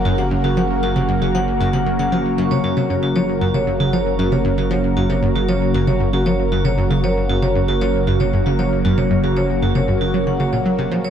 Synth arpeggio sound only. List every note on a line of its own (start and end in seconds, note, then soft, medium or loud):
0.05 0.14 F#2 loud
0.18 0.24 C3 medium
0.31 0.37 F#2 medium
0.44 0.53 C#3 medium
0.57 0.61 F3 medium
0.83 0.92 F#2 loud
0.96 1.02 C3 medium
1.09 1.15 F#2 medium
1.22 1.30 C#3 medium
1.35 1.38 F3 medium
1.61 1.69 F#2 loud
1.73 1.79 C3 medium
1.86 1.92 F#2 medium
1.99 2.08 C#3 medium
2.12 2.16 F3 medium
2.38 2.47 F#2 loud
2.51 2.57 C3 medium
2.64 2.73 F#2 loud
2.77 2.83 C3 medium
2.90 2.96 F#2 medium
3.03 3.12 C#3 medium
3.16 3.19 F3 medium
3.41 3.50 F#2 loud
3.54 3.60 C3 medium
3.67 3.73 F#2 medium
3.80 3.89 C#3 medium
3.93 3.97 F3 medium
4.19 4.28 F#2 loud
4.32 4.38 C3 medium
4.45 4.51 F#2 medium
4.58 4.67 C#3 medium
4.71 4.74 F3 medium
4.97 5.06 F#2 loud
5.10 5.16 C3 medium
5.23 5.28 F#2 medium
5.35 5.44 C#3 medium
5.48 5.52 F3 medium
5.74 5.83 F#2 loud
5.87 5.93 C3 medium
6.00 6.06 F#2 medium
6.13 6.22 C#3 medium
6.26 6.30 F3 medium
6.52 6.61 F#2 loud
6.65 6.71 C3 medium
6.78 6.84 F#2 medium
6.91 6.99 C#3 medium
7.04 7.07 F3 medium
7.29 7.38 F#2 loud
7.42 7.48 C3 medium
7.55 7.61 F#2 medium
7.68 7.77 C#3 medium
7.81 7.85 F3 medium
8.07 8.16 F#2 medium
8.20 8.26 C3 medium
8.33 8.39 F#2 medium
8.46 8.55 C#3 medium
8.59 8.62 F3 medium
8.85 8.94 F#2 loud
8.98 9.04 C3 medium
9.11 9.17 F#2 medium
9.24 9.32 C#3 medium
9.37 9.40 F3 medium
9.62 9.71 F#2 loud
9.75 9.81 C3 medium
9.88 9.94 F#2 medium
10.01 10.10 C#3 medium
10.14 10.18 F#3 medium
10.27 10.30 C#3 medium
10.40 10.46 C#3 medium
10.53 10.59 A#2 medium
10.66 10.72 F#3 medium
10.78 10.87 C3 loud
10.91 10.95 F3 medium